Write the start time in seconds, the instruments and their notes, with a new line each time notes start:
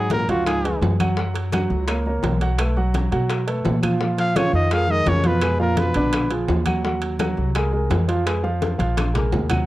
Already playing: upright bass G#2, grand piano F#3 F#4 F#5, trumpet G#4
0.10 baritone saxophone A#2, trumpet A#4, high bongo, high conga, high timbale, low timbale
0.29 upright bass C#2, baritone saxophone F#2, grand piano F3 F4 F5, trumpet F#4, high bongo, high conga, high timbale
0.46 baritone saxophone G#2, trumpet G#4, high bongo, high conga, high timbale, claves
0.64 grand piano G#3 G#4 B4, high conga, high timbale
0.81 upright bass F#2, high bongo, low bongo, high conga, low timbale
1.00 grand piano F#3 F#4 F#5, high bongo, high conga, high timbale, claves
1.17 grand piano F#3 F#4 F#5, high bongo, high conga
1.34 high bongo, high conga, high timbale
1.52 grand piano F#3 F#4 F#5, high bongo, high conga, high timbale, low timbale, claves
1.70 upright bass C#2, high bongo
1.88 grand piano A#3 A#4 C#5, high bongo, high conga, high timbale, claves
2.06 grand piano A#3 A#4 C#5, high conga
2.23 upright bass B1, high bongo, low bongo, high conga, high timbale, low timbale
2.41 grand piano F#3 F#4 F#5, high bongo, high timbale
2.58 grand piano A3 A4 B4, high bongo, high timbale, claves
2.77 grand piano F#3 F#4 F#5, high bongo, high conga
2.94 high bongo, high conga, high timbale, low timbale
3.11 upright bass B2, grand piano F#3 F#4 F#5, high bongo, high timbale
3.30 high bongo, high conga, high timbale, claves
3.47 grand piano A3 A4 B4, high conga, high timbale
3.65 upright bass A#2, high bongo, low bongo, high conga, low timbale
3.82 grand piano F3 F4 F5, high bongo, high conga, high timbale, claves
4.00 grand piano F3 F4 F5, high bongo, high conga
4.17 baritone saxophone F3, trumpet F5, high bongo, high conga, high timbale
4.36 baritone saxophone C#3, grand piano F3 F4 F5, trumpet C#5, high bongo, high conga, high timbale, low timbale, claves
4.53 upright bass F2, baritone saxophone D#3, trumpet D#5, high bongo
4.71 baritone saxophone F3, grand piano G#3 G#4 A#4, trumpet F5, high bongo, high conga, high timbale, claves
4.88 baritone saxophone D#3, grand piano G#3 G#4 A#4, trumpet D#5, high conga
5.06 upright bass F2, baritone saxophone C#3, trumpet C#5, high bongo, low bongo, high conga, high timbale, low timbale
5.24 baritone saxophone B2, grand piano F3 F4 F5, trumpet B4, high bongo, high conga, high timbale
5.41 grand piano G#3 G#4 B4, high bongo, high timbale, claves
5.59 baritone saxophone A#2, grand piano F3 F4 F5, trumpet A#4, high bongo, high conga
5.77 baritone saxophone B2, trumpet B4, high bongo, high conga, high timbale, low timbale
5.94 upright bass A#1, grand piano D3 D4 D5, high bongo, high timbale
6.13 high bongo, high conga, high timbale, claves
6.30 grand piano F3 F4 G#4, high conga, high timbale
6.48 upright bass D#2, high bongo, low bongo, high conga, low timbale
6.66 grand piano F#3 F#4 F#5, high bongo, high conga, high timbale, claves
6.84 grand piano F#3 F#4 F#5, high bongo, high conga
7.02 high bongo, high conga, high timbale
7.19 grand piano F#3 F#4 F#5, high bongo, high conga, high timbale, low timbale, claves
7.37 upright bass C2, high bongo
7.55 grand piano G#3 G#4 A#4, high bongo, high conga, high timbale, claves
7.73 grand piano G#3 G#4 A#4, high conga
7.90 upright bass F2, high bongo, low bongo, high conga, high timbale, low timbale
8.08 grand piano F3 F4 F5, high bongo, high timbale
8.26 grand piano G#3 G#4 B4, high bongo, high conga, high timbale, claves
8.43 grand piano F3 F4 F5, high bongo, high conga
8.62 high bongo, high conga, high timbale, low timbale
8.78 upright bass A#1, grand piano F3 F4 F5, high bongo, high conga, high timbale
8.97 high bongo, high conga, high timbale, claves
9.14 grand piano G#3 G#4 A#4, high bongo, low conga, high timbale
9.32 upright bass D#2, low bongo, low conga, low timbale
9.49 grand piano F#3 F#4 F#5, low bongo, low conga, high timbale, claves